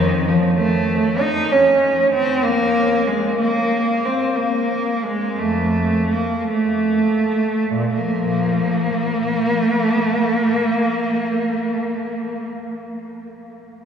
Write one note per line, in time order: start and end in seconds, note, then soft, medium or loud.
0.00 0.24 F2 medium
0.00 0.28 D#3 medium
0.28 0.59 F3 medium
0.58 1.19 A3 medium
1.20 1.51 D#4 medium
1.51 2.13 C#4 medium
2.13 2.43 C4 medium
2.42 3.06 A#3 medium
3.07 3.39 G#3 medium
3.39 4.03 A#3 medium
4.05 4.37 C4 medium
4.36 5.03 A#3 medium
5.03 5.39 G#3 medium
5.38 6.07 F2 medium
5.38 6.12 A3 medium
6.12 6.50 A#3 medium
6.49 7.70 A3 medium
7.73 7.93 A#2 medium
7.94 9.45 F3 medium
7.94 12.49 A#3 medium